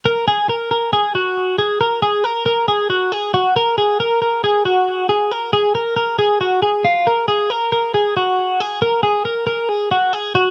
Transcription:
X:1
M:4/4
L:1/8
Q:1/4=137
K:Gb
V:1 name="Clean electric guitar"
B A B B A G2 A | B A B B A G A G | B A B B A G2 A | B A B B A G A F |
B A B B A G2 A | B A B B A G A G |]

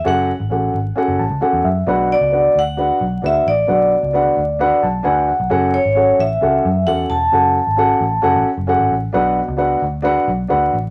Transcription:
X:1
M:4/4
L:1/16
Q:1/4=132
K:Bdor
V:1 name="Vibraphone"
f12 z4 | z2 d4 f6 e2 d2- | d8- d2 z6 | z2 c4 e6 f2 a2- |
a8- a2 z6 | z16 |]
V:2 name="Upright piano"
[CFAf]2 z2 [CFAf]2 z2 [CFAf]2 a2 [CFAf]2 e2 | [DFBf]2 z2 [DFBf]2 z2 [DFBf]2 z2 [DFBf]2 z2 | [DFBf]2 z2 [DFBf]2 z2 [DFBf]2 a2 [DFBfg]2 f2 | [CFAf]2 z2 [CFAf]2 z2 [CFAf]2 z2 [CFAf]2 z2 |
[CFAf]2 z2 [CFAf]2 z2 [CFAf]2 z2 [CFAf]2 z2 | [DFBf]2 z2 [DFBf]2 z2 [DFBf]2 z2 [DFBf]2 z2 |]
V:3 name="Upright piano" clef=bass
z16 | B,,6 z8 z2 | B,,6 z8 z2 | z16 |
z16 | B,,6 z8 z2 |]
V:4 name="Picked electric bass" clef=bass
F,,,3 G,,, A,,,2 G,,,2 z F,,, A,,, C,, z E,, F,,2 | B,,,3 C,,3 D,,4 B,,,2 D,,2 A,,,2 | B,,,3 C,,3 D,,4 B,,,2 D,,3 B,,, | F,,,3 G,,,3 A,,,2 C,,2 F,,2 E,,2 E,,,2 |
F,,,3 G,,,3 A,,,2 F,,, A,,, z F,,,2 G,,, A,,,2 | B,,,3 C,,3 D,,4 B,,,2 D,,2 A,,,2 |]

